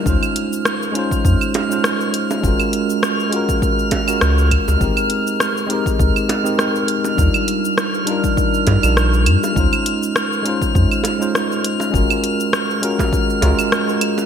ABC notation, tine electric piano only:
X:1
M:4/4
L:1/16
Q:"Swing 16ths" 1/4=101
K:Dblyd
V:1 name="Tine electric piano"
[A,DEFc]6 [A,DEFc]4- [A,DEFc] [A,DEFc] z4 | [A,DF_GB]6 [A,DFGB]4- [A,DFGB] [A,DFGB] z4 | [A,CEGB]6 [A,CEGB]4- [A,CEGB] [A,CEGB] z4 | [G,=DEFB]6 [G,DEFB]4- [G,DEFB] [G,DEFB] z4 |
[A,DEFc]6 [A,DEFc]4- [A,DEFc] [A,DEFc] z4 | [A,DF_GB]6 [A,DFGB]4 [A,DFGB] z4 z |]